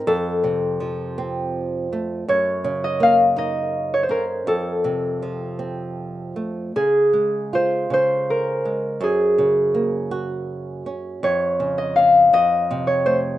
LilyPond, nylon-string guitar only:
\new Staff \with { instrumentName = "Nylon-string guitar" } { \clef bass \time 6/8 \key f \phrygian \tempo 4. = 54 f,8 c8 f8 c'4 a8 | ges,8 des8 bes8 ees'4 des'8 | f,8 c8 f8 c'4 a8 | des8 aes8 f'8 des4 aes8 |
ges,8 des8 bes8 ges'4 des'8 | f,8 des8 des'8 f,8 c8 a8 | }